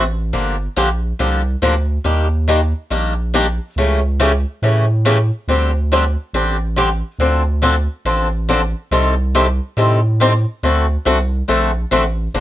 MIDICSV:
0, 0, Header, 1, 3, 480
1, 0, Start_track
1, 0, Tempo, 428878
1, 375, Time_signature, 4, 2, 24, 8
1, 13879, End_track
2, 0, Start_track
2, 0, Title_t, "Steel-string acoustic guitar"
2, 0, Program_c, 0, 25
2, 369, Note_on_c, 0, 53, 60
2, 372, Note_on_c, 0, 50, 57
2, 372, Note_on_c, 0, 58, 63
2, 381, Note_on_c, 0, 67, 66
2, 382, Note_on_c, 0, 62, 57
2, 613, Note_off_c, 0, 53, 0
2, 615, Note_off_c, 0, 50, 0
2, 615, Note_off_c, 0, 58, 0
2, 619, Note_off_c, 0, 62, 0
2, 619, Note_off_c, 0, 67, 0
2, 856, Note_on_c, 0, 50, 79
2, 858, Note_on_c, 0, 53, 86
2, 860, Note_on_c, 0, 58, 81
2, 864, Note_on_c, 0, 62, 93
2, 870, Note_on_c, 0, 67, 101
2, 983, Note_off_c, 0, 50, 0
2, 984, Note_off_c, 0, 53, 0
2, 985, Note_off_c, 0, 58, 0
2, 987, Note_off_c, 0, 62, 0
2, 990, Note_off_c, 0, 67, 0
2, 1334, Note_on_c, 0, 50, 66
2, 1337, Note_on_c, 0, 53, 62
2, 1340, Note_on_c, 0, 58, 58
2, 1344, Note_on_c, 0, 62, 59
2, 1344, Note_on_c, 0, 67, 64
2, 1575, Note_off_c, 0, 50, 0
2, 1577, Note_off_c, 0, 53, 0
2, 1578, Note_off_c, 0, 58, 0
2, 1580, Note_off_c, 0, 62, 0
2, 1580, Note_off_c, 0, 67, 0
2, 1812, Note_on_c, 0, 50, 85
2, 1819, Note_on_c, 0, 53, 90
2, 1822, Note_on_c, 0, 58, 94
2, 1824, Note_on_c, 0, 62, 92
2, 1824, Note_on_c, 0, 67, 88
2, 1941, Note_off_c, 0, 50, 0
2, 1944, Note_off_c, 0, 53, 0
2, 1946, Note_off_c, 0, 58, 0
2, 1947, Note_off_c, 0, 62, 0
2, 1947, Note_off_c, 0, 67, 0
2, 2287, Note_on_c, 0, 51, 60
2, 2290, Note_on_c, 0, 58, 55
2, 2291, Note_on_c, 0, 55, 53
2, 2299, Note_on_c, 0, 62, 71
2, 2299, Note_on_c, 0, 67, 61
2, 2532, Note_off_c, 0, 51, 0
2, 2533, Note_off_c, 0, 58, 0
2, 2534, Note_off_c, 0, 55, 0
2, 2538, Note_off_c, 0, 62, 0
2, 2538, Note_off_c, 0, 67, 0
2, 2772, Note_on_c, 0, 51, 74
2, 2782, Note_on_c, 0, 55, 90
2, 2782, Note_on_c, 0, 58, 78
2, 2788, Note_on_c, 0, 62, 81
2, 2789, Note_on_c, 0, 67, 91
2, 2901, Note_off_c, 0, 51, 0
2, 2906, Note_off_c, 0, 55, 0
2, 2906, Note_off_c, 0, 58, 0
2, 2908, Note_off_c, 0, 62, 0
2, 2909, Note_off_c, 0, 67, 0
2, 3250, Note_on_c, 0, 51, 53
2, 3255, Note_on_c, 0, 55, 59
2, 3259, Note_on_c, 0, 58, 65
2, 3263, Note_on_c, 0, 62, 73
2, 3266, Note_on_c, 0, 67, 68
2, 3493, Note_off_c, 0, 51, 0
2, 3496, Note_off_c, 0, 55, 0
2, 3498, Note_off_c, 0, 58, 0
2, 3500, Note_off_c, 0, 62, 0
2, 3502, Note_off_c, 0, 67, 0
2, 3735, Note_on_c, 0, 51, 80
2, 3739, Note_on_c, 0, 55, 85
2, 3742, Note_on_c, 0, 58, 86
2, 3744, Note_on_c, 0, 62, 91
2, 3750, Note_on_c, 0, 67, 88
2, 3862, Note_off_c, 0, 51, 0
2, 3864, Note_off_c, 0, 55, 0
2, 3866, Note_off_c, 0, 58, 0
2, 3867, Note_off_c, 0, 62, 0
2, 3870, Note_off_c, 0, 67, 0
2, 4229, Note_on_c, 0, 49, 64
2, 4230, Note_on_c, 0, 52, 58
2, 4233, Note_on_c, 0, 57, 59
2, 4239, Note_on_c, 0, 61, 62
2, 4242, Note_on_c, 0, 67, 61
2, 4463, Note_off_c, 0, 49, 0
2, 4464, Note_off_c, 0, 52, 0
2, 4465, Note_off_c, 0, 57, 0
2, 4468, Note_off_c, 0, 61, 0
2, 4470, Note_off_c, 0, 67, 0
2, 4697, Note_on_c, 0, 49, 92
2, 4700, Note_on_c, 0, 52, 76
2, 4707, Note_on_c, 0, 57, 94
2, 4707, Note_on_c, 0, 67, 85
2, 4712, Note_on_c, 0, 61, 84
2, 4823, Note_off_c, 0, 49, 0
2, 4825, Note_off_c, 0, 52, 0
2, 4828, Note_off_c, 0, 57, 0
2, 4829, Note_off_c, 0, 67, 0
2, 4831, Note_off_c, 0, 61, 0
2, 5179, Note_on_c, 0, 49, 52
2, 5180, Note_on_c, 0, 52, 58
2, 5186, Note_on_c, 0, 57, 66
2, 5191, Note_on_c, 0, 61, 71
2, 5197, Note_on_c, 0, 67, 71
2, 5418, Note_off_c, 0, 49, 0
2, 5419, Note_off_c, 0, 52, 0
2, 5422, Note_off_c, 0, 57, 0
2, 5424, Note_off_c, 0, 61, 0
2, 5427, Note_off_c, 0, 67, 0
2, 5652, Note_on_c, 0, 49, 88
2, 5658, Note_on_c, 0, 52, 89
2, 5658, Note_on_c, 0, 57, 90
2, 5663, Note_on_c, 0, 61, 89
2, 5672, Note_on_c, 0, 67, 99
2, 5781, Note_off_c, 0, 49, 0
2, 5784, Note_off_c, 0, 57, 0
2, 5785, Note_off_c, 0, 52, 0
2, 5787, Note_off_c, 0, 61, 0
2, 5791, Note_off_c, 0, 67, 0
2, 6139, Note_on_c, 0, 50, 63
2, 6143, Note_on_c, 0, 55, 57
2, 6145, Note_on_c, 0, 60, 62
2, 6154, Note_on_c, 0, 62, 61
2, 6155, Note_on_c, 0, 67, 66
2, 6379, Note_off_c, 0, 50, 0
2, 6381, Note_off_c, 0, 55, 0
2, 6382, Note_off_c, 0, 60, 0
2, 6386, Note_off_c, 0, 62, 0
2, 6387, Note_off_c, 0, 67, 0
2, 6623, Note_on_c, 0, 50, 81
2, 6630, Note_on_c, 0, 60, 93
2, 6633, Note_on_c, 0, 55, 86
2, 6637, Note_on_c, 0, 62, 87
2, 6637, Note_on_c, 0, 67, 80
2, 6747, Note_off_c, 0, 50, 0
2, 6751, Note_off_c, 0, 60, 0
2, 6752, Note_off_c, 0, 55, 0
2, 6754, Note_off_c, 0, 62, 0
2, 6754, Note_off_c, 0, 67, 0
2, 7097, Note_on_c, 0, 50, 62
2, 7098, Note_on_c, 0, 60, 68
2, 7099, Note_on_c, 0, 55, 66
2, 7104, Note_on_c, 0, 62, 72
2, 7111, Note_on_c, 0, 67, 71
2, 7338, Note_off_c, 0, 50, 0
2, 7339, Note_off_c, 0, 55, 0
2, 7339, Note_off_c, 0, 60, 0
2, 7341, Note_off_c, 0, 62, 0
2, 7345, Note_off_c, 0, 67, 0
2, 7570, Note_on_c, 0, 50, 79
2, 7580, Note_on_c, 0, 60, 80
2, 7581, Note_on_c, 0, 55, 88
2, 7586, Note_on_c, 0, 67, 105
2, 7587, Note_on_c, 0, 62, 91
2, 7701, Note_off_c, 0, 50, 0
2, 7706, Note_off_c, 0, 55, 0
2, 7706, Note_off_c, 0, 60, 0
2, 7709, Note_off_c, 0, 67, 0
2, 7710, Note_off_c, 0, 62, 0
2, 8055, Note_on_c, 0, 50, 58
2, 8057, Note_on_c, 0, 53, 55
2, 8062, Note_on_c, 0, 60, 63
2, 8066, Note_on_c, 0, 62, 59
2, 8069, Note_on_c, 0, 69, 63
2, 8298, Note_off_c, 0, 50, 0
2, 8298, Note_off_c, 0, 53, 0
2, 8301, Note_off_c, 0, 60, 0
2, 8303, Note_off_c, 0, 62, 0
2, 8304, Note_off_c, 0, 69, 0
2, 8526, Note_on_c, 0, 50, 77
2, 8533, Note_on_c, 0, 53, 83
2, 8534, Note_on_c, 0, 60, 77
2, 8542, Note_on_c, 0, 62, 98
2, 8543, Note_on_c, 0, 69, 96
2, 8659, Note_off_c, 0, 50, 0
2, 8663, Note_off_c, 0, 53, 0
2, 8663, Note_off_c, 0, 60, 0
2, 8667, Note_off_c, 0, 62, 0
2, 8668, Note_off_c, 0, 69, 0
2, 9014, Note_on_c, 0, 50, 62
2, 9015, Note_on_c, 0, 53, 64
2, 9019, Note_on_c, 0, 60, 63
2, 9021, Note_on_c, 0, 62, 71
2, 9024, Note_on_c, 0, 69, 60
2, 9257, Note_off_c, 0, 50, 0
2, 9257, Note_off_c, 0, 53, 0
2, 9259, Note_off_c, 0, 60, 0
2, 9260, Note_off_c, 0, 62, 0
2, 9262, Note_off_c, 0, 69, 0
2, 9498, Note_on_c, 0, 50, 91
2, 9505, Note_on_c, 0, 53, 84
2, 9507, Note_on_c, 0, 60, 85
2, 9508, Note_on_c, 0, 62, 100
2, 9520, Note_on_c, 0, 69, 85
2, 9625, Note_off_c, 0, 50, 0
2, 9629, Note_off_c, 0, 53, 0
2, 9630, Note_off_c, 0, 60, 0
2, 9630, Note_off_c, 0, 62, 0
2, 9636, Note_off_c, 0, 69, 0
2, 9977, Note_on_c, 0, 48, 63
2, 9982, Note_on_c, 0, 51, 63
2, 9985, Note_on_c, 0, 55, 63
2, 9985, Note_on_c, 0, 60, 60
2, 9987, Note_on_c, 0, 67, 65
2, 9992, Note_on_c, 0, 69, 59
2, 10218, Note_off_c, 0, 48, 0
2, 10221, Note_off_c, 0, 51, 0
2, 10222, Note_off_c, 0, 55, 0
2, 10223, Note_off_c, 0, 60, 0
2, 10224, Note_off_c, 0, 67, 0
2, 10226, Note_off_c, 0, 69, 0
2, 10461, Note_on_c, 0, 48, 88
2, 10462, Note_on_c, 0, 51, 88
2, 10465, Note_on_c, 0, 67, 88
2, 10466, Note_on_c, 0, 55, 88
2, 10467, Note_on_c, 0, 60, 82
2, 10467, Note_on_c, 0, 69, 85
2, 10587, Note_off_c, 0, 48, 0
2, 10588, Note_off_c, 0, 51, 0
2, 10589, Note_off_c, 0, 55, 0
2, 10589, Note_off_c, 0, 67, 0
2, 10590, Note_off_c, 0, 60, 0
2, 10590, Note_off_c, 0, 69, 0
2, 10932, Note_on_c, 0, 48, 65
2, 10938, Note_on_c, 0, 51, 61
2, 10941, Note_on_c, 0, 55, 58
2, 10944, Note_on_c, 0, 60, 64
2, 10946, Note_on_c, 0, 67, 70
2, 10946, Note_on_c, 0, 69, 67
2, 11176, Note_off_c, 0, 48, 0
2, 11179, Note_off_c, 0, 51, 0
2, 11180, Note_off_c, 0, 55, 0
2, 11182, Note_off_c, 0, 60, 0
2, 11183, Note_off_c, 0, 67, 0
2, 11183, Note_off_c, 0, 69, 0
2, 11417, Note_on_c, 0, 48, 79
2, 11425, Note_on_c, 0, 51, 87
2, 11426, Note_on_c, 0, 55, 78
2, 11428, Note_on_c, 0, 67, 88
2, 11431, Note_on_c, 0, 60, 100
2, 11431, Note_on_c, 0, 69, 86
2, 11545, Note_off_c, 0, 48, 0
2, 11548, Note_off_c, 0, 51, 0
2, 11549, Note_off_c, 0, 55, 0
2, 11550, Note_off_c, 0, 67, 0
2, 11552, Note_off_c, 0, 60, 0
2, 11552, Note_off_c, 0, 69, 0
2, 11901, Note_on_c, 0, 50, 67
2, 11907, Note_on_c, 0, 57, 63
2, 11910, Note_on_c, 0, 60, 62
2, 11915, Note_on_c, 0, 66, 61
2, 11918, Note_on_c, 0, 69, 68
2, 12140, Note_off_c, 0, 50, 0
2, 12143, Note_off_c, 0, 57, 0
2, 12145, Note_off_c, 0, 60, 0
2, 12147, Note_off_c, 0, 66, 0
2, 12149, Note_off_c, 0, 69, 0
2, 12371, Note_on_c, 0, 50, 79
2, 12378, Note_on_c, 0, 57, 82
2, 12378, Note_on_c, 0, 60, 92
2, 12381, Note_on_c, 0, 66, 104
2, 12385, Note_on_c, 0, 69, 106
2, 12501, Note_off_c, 0, 50, 0
2, 12505, Note_off_c, 0, 57, 0
2, 12505, Note_off_c, 0, 60, 0
2, 12507, Note_off_c, 0, 66, 0
2, 12509, Note_off_c, 0, 69, 0
2, 12848, Note_on_c, 0, 50, 54
2, 12852, Note_on_c, 0, 57, 74
2, 12854, Note_on_c, 0, 60, 68
2, 12858, Note_on_c, 0, 66, 63
2, 12859, Note_on_c, 0, 69, 76
2, 13093, Note_off_c, 0, 50, 0
2, 13096, Note_off_c, 0, 57, 0
2, 13096, Note_off_c, 0, 60, 0
2, 13099, Note_off_c, 0, 66, 0
2, 13099, Note_off_c, 0, 69, 0
2, 13331, Note_on_c, 0, 50, 88
2, 13340, Note_on_c, 0, 57, 84
2, 13340, Note_on_c, 0, 60, 90
2, 13343, Note_on_c, 0, 66, 88
2, 13346, Note_on_c, 0, 69, 101
2, 13461, Note_off_c, 0, 50, 0
2, 13466, Note_off_c, 0, 57, 0
2, 13466, Note_off_c, 0, 60, 0
2, 13467, Note_off_c, 0, 66, 0
2, 13469, Note_off_c, 0, 69, 0
2, 13816, Note_on_c, 0, 50, 55
2, 13816, Note_on_c, 0, 53, 57
2, 13816, Note_on_c, 0, 58, 66
2, 13819, Note_on_c, 0, 62, 69
2, 13827, Note_on_c, 0, 67, 77
2, 13879, Note_off_c, 0, 50, 0
2, 13879, Note_off_c, 0, 53, 0
2, 13879, Note_off_c, 0, 58, 0
2, 13879, Note_off_c, 0, 62, 0
2, 13879, Note_off_c, 0, 67, 0
2, 13879, End_track
3, 0, Start_track
3, 0, Title_t, "Analog synth bass"
3, 0, Program_c, 1, 38
3, 0, Note_on_c, 1, 33, 100
3, 360, Note_off_c, 1, 33, 0
3, 374, Note_on_c, 1, 31, 87
3, 758, Note_off_c, 1, 31, 0
3, 858, Note_on_c, 1, 34, 90
3, 1264, Note_off_c, 1, 34, 0
3, 1339, Note_on_c, 1, 36, 79
3, 1744, Note_off_c, 1, 36, 0
3, 1813, Note_on_c, 1, 38, 79
3, 2221, Note_off_c, 1, 38, 0
3, 2290, Note_on_c, 1, 39, 86
3, 3060, Note_off_c, 1, 39, 0
3, 3253, Note_on_c, 1, 34, 70
3, 4021, Note_off_c, 1, 34, 0
3, 4210, Note_on_c, 1, 37, 89
3, 4980, Note_off_c, 1, 37, 0
3, 5174, Note_on_c, 1, 45, 79
3, 5943, Note_off_c, 1, 45, 0
3, 6129, Note_on_c, 1, 38, 81
3, 6900, Note_off_c, 1, 38, 0
3, 7090, Note_on_c, 1, 33, 76
3, 7860, Note_off_c, 1, 33, 0
3, 8042, Note_on_c, 1, 38, 85
3, 8816, Note_off_c, 1, 38, 0
3, 9011, Note_on_c, 1, 33, 81
3, 9781, Note_off_c, 1, 33, 0
3, 9974, Note_on_c, 1, 36, 99
3, 10743, Note_off_c, 1, 36, 0
3, 10933, Note_on_c, 1, 45, 77
3, 11702, Note_off_c, 1, 45, 0
3, 11898, Note_on_c, 1, 38, 87
3, 12281, Note_off_c, 1, 38, 0
3, 12376, Note_on_c, 1, 36, 84
3, 12784, Note_off_c, 1, 36, 0
3, 12858, Note_on_c, 1, 34, 74
3, 13265, Note_off_c, 1, 34, 0
3, 13336, Note_on_c, 1, 33, 82
3, 13744, Note_off_c, 1, 33, 0
3, 13812, Note_on_c, 1, 31, 91
3, 13879, Note_off_c, 1, 31, 0
3, 13879, End_track
0, 0, End_of_file